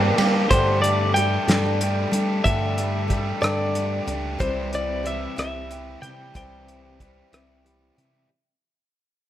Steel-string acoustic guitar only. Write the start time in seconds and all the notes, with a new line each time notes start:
Already playing: G3 A#3 D4 G4
0.18 G3 A#3 D4 G4
0.51 G2 D3 G3 D4 G4 A4
1.15 G3 D4 G4 A4
1.48 G2 D3 G3 D4 G4 A4
2.11 G3 D4 G4 A4
2.44 G2 D3 G3 D4 G4 A4
3.08 G3 D4 G4 A4
3.41 G2 D3 G3 D4 G4 A4
4.06 G3 D4 G4 A4
4.39 C3 G3 C4 E4 G4
5.03 G3 C4 E4 G4
5.36 C3 G3 C4 E4 G4
6.01 C4 E4 G4
6.34 C3 G3 C4 E4 G4
6.99 G3 C4 E4 G4
7.32 C3 G3 C4 E4 G4
7.97 C4 E4 G4